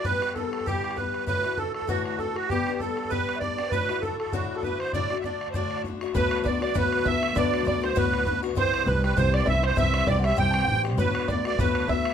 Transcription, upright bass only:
X:1
M:4/4
L:1/8
Q:"Swing" 1/4=198
K:Dmix
V:1 name="Upright bass" clef=bass
z8 | z8 | z8 | z8 |
z8 | D,,2 D,,2 D,,2 D,,2 | D,,2 D,,2 D,,2 D,,2 | C,,2 C,,2 C,,2 C,,2 |
C,,2 C,,2 C,,2 A,,,2 | D,,2 D,,2 D,,2 D,,2 |]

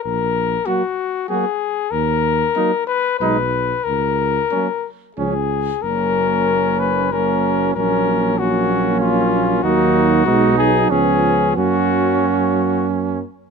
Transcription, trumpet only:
X:1
M:3/4
L:1/8
Q:1/4=93
K:F#
V:1 name="Trumpet"
z2 F2 F2 | z2 D2 D2 | z2 C2 C2 | C4 C2 |
C2 C4 | D2 D2 C2 | C4- C z |]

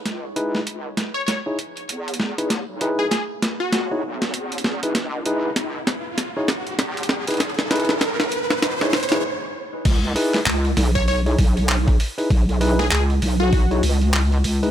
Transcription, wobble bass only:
X:1
M:4/4
L:1/16
Q:"Swing 16ths" 1/4=98
K:C#m
V:1 name="Wobble bass" clef=bass
C,,6 z6 E,,3 E,,- | E,, B,,,3 z4 E,,2 B,,,2 E,,3 C,, | C,,6 z6 E,,3 E,,- | E,, B,,,3 G,,,2 z2 C,,2 z6 |
C,,2 z2 C,,2 B,,,4 B,,,4 z2 | B,,,4 C,,2 B,,,4 C,,4 C,,2 |]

